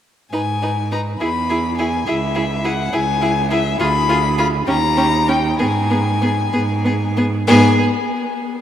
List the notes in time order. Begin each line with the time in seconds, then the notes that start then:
0.32 G#2 D#4 B4 G#5
0.62 D#4 B4
0.92 D#4 B4 A#5
1.20 E2 E4 G#4 B5
1.50 E4 G#4
1.78 E4 G#4 G#5
2.06 C#2 E4 G#4 E5
2.35 E4 G#4
2.64 E4 G#4 F#5
2.93 C#2 E4 G#4 G#5
3.22 E4 G#4
3.51 E4 G#4 E5
3.80 D2 F4 G#4 B5
4.09 F4 G#4
4.38 F4 G#4 B5
4.67 D#2 C#4 G4 A#5
4.97 C#4 G4
5.27 C#4 G4 G5
5.59 G#2 B3 G#4 G#5
5.90 B3 G#4
6.21 B3 G#4
6.53 G#2 B3 G#4
6.85 B3 G#4
7.17 B3 G#4
7.47 G#2 B3 G#4 G#5